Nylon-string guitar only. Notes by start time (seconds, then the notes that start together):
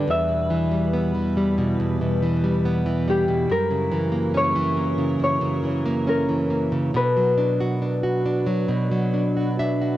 0.08 E2
0.29 B2
0.50 E3
0.71 G3
0.93 B3
1.15 E3
1.37 G3
1.58 B2
1.80 E2
2.01 B2
2.22 E3
2.44 G3
2.65 B3
2.86 E3
3.08 G3
3.28 B2
3.50 F#2
3.71 C#3
3.92 E3
4.12 A#3
4.34 C#4
4.55 E3
4.77 A#3
4.98 C#3
5.20 F#2
5.41 C#3
5.63 E3
5.86 A#3
6.07 C#4
6.29 E3
6.50 A#3
6.72 C#3
6.94 B2
7.17 F#3
7.38 D4
7.60 F#4
7.82 D4
8.03 F#4
8.26 D4
8.47 F#3
8.68 B2
8.92 F#3
9.14 D4
9.37 F#4
9.59 D4 E5
9.82 F#4